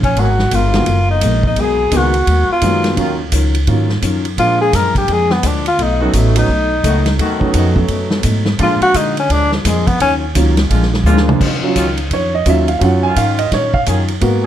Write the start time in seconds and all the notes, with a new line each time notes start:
Already playing: A#1
0.03 C#4, kick, ride
0.15 G#1 F#3 G#3 A#3 B3 F#4 G#4, kick, ride
0.19 F#4 A#4
0.39 snare
0.51 G1 G#3 B3 F4 F#4 A#4, kick, hi-hat pedal, ride
0.74 D#3 G#3 A#3 B3 F#4, snare, ride
0.86 F#1 G#3 B3 F#4 A#4, kick, ride
1.11 D#4
1.21 A#1 G#3 B3 F#4 A#4, kick, hi-hat pedal, ride
1.43 D#4, kick
1.56 B1 F#3 G#3 A#3 B3 F#4 G#4 A#4, kick, ride
1.61 G#4
1.91 C#2 D#3 G#3 A#3 B3 F#4 A#4, kick, hi-hat pedal, ride
1.97 F#4
2.14 ride
2.26 D#2 G#3 B3 F#4 A#4, kick, ride
2.49 F4, muted upright bass stroke
2.61 F#2 D#3 F#3 G#3 A#3 B3 F#4 A#4, kick, hi-hat pedal, ride
2.84 snare, ride
2.96 D#2 D#3 F#3 A#3 C#4 F4, kick, ride
3.32 C#2 D#3 F#3 C#4 F4, kick, hi-hat pedal, ride
3.55 ride
3.66 G#2 D#3 F#3 A#3 C#4 F4, kick, ride
3.89 snare
4.01 F#2 D#3 F#3 C#4 F4, kick, hi-hat pedal, ride
4.25 ride
4.36 A#2 F3 G#3 A#3 D4 F4, kick, ride
4.61 G#4
4.72 F#2 A#2 F3 G#3 D4 A#4, kick, snare, hi-hat pedal, ride
4.95 G4, kick, ride
5.06 F2 A#2 F3 G#3 D4, kick, ride
5.13 G#4
5.30 B3, snare
5.42 D2 A#2 F3 G#3 D4, kick, hi-hat pedal, ride
5.47 D4
5.66 F4, ride
5.77 B1 B2 F#3 A3 D#4, kick, ride
5.83 D#4
5.99 D#3 F#3 A3 B3 C#4 D#4 F#4
6.03 F#3
6.13 A1 B2 F#3 A3 D#4, kick, hi-hat pedal, ride
6.36 F#3 A3 B3 C#4 D#4, ride
6.47 B1 B2 F#3 A3 D#4, kick
6.83 C#2 B2 D#3 F#3 A3 B3 D#4 F#4, kick, hi-hat pedal, ride
7.06 snare, ride
7.18 D#2 B2 D#3 F#3 A3 B3 D#4 F#4, kick, ride
7.40 F#3 A3 B3 C#4 D#4, kick
7.53 F2 B2 D#3 F#3 A3 B3 D#4 F#4, kick, hi-hat pedal, ride
7.75 F#3 A3 B3 C#4 F#4, kick
7.88 F#2 B2 F#3 A3 D#4, kick, ride
8.11 snare
8.23 G#2 B2 F#3 A3 D#4, kick, hi-hat pedal, ride
8.45 snare
8.58 A#2 D3 F3 G#3 A#3 D4 F4, kick, ride
8.62 F4
8.81 F#4, muted upright bass stroke, ride
8.94 A#2 D3 F3 G#3 D4 D#4, kick, hi-hat pedal, ride
9.17 C#4, ride
9.30 D2 A#2 F3 G#3 D4, kick, ride
9.52 F3, snare
9.64 F2 A#2 F3 G#3 D4, kick, snare, hi-hat pedal, ride
9.87 B3, kick, ride
9.99 D#2 D#3 F#3 C#4 F4, kick, ride
10.35 C#2 D#3 F#3 A#3 C#4 F4, kick, hi-hat pedal, ride
10.57 snare, ride
10.69 A#1 A#2 D3 G#3 A#3 D4 F4, kick, ride
10.74 F4
10.83 snare
10.94 snare
11.03 D2 A#2 D3 F3 G#3 A#3 D4 F4, hi-hat pedal
11.08 F4
11.17 snare
11.29 mid tom
11.40 D#2 D#3 F#3 C#4 F4, kick, crash
11.61 F#3 C#4 F4, muted upright bass stroke
11.75 C#2 D#3 F#3 C#4 F4, kick, hi-hat pedal, ride
11.97 ride
12.09 F2 D#3 F#3 C#4 F4, kick, ride
12.13 C#5
12.35 D#5
12.45 D#2 D#3 F#3 C#4 F4 E5, kick, hi-hat pedal, ride
12.68 F5, ride
12.79 F#2 D#3 F#3 C#4 F4 F5, kick, ride
12.83 F4 F#5
13.03 D#3 F#3 C#4 F4 G#5
13.15 G#2 D#3 F#3 C#4 F4 F5, kick, hi-hat pedal, ride
13.39 D#5, ride
13.50 A#2 D#3 F#3 C#4 F4 C#5, kick, snare, ride
13.74 F5, kick
13.86 F#2 D#3 F#3 C#4 F4 G#4, kick, hi-hat pedal, ride
14.08 ride
14.20 G#2 G#3 A#3 B3 F#4 A#4, kick, ride
14.42 F#3 G#4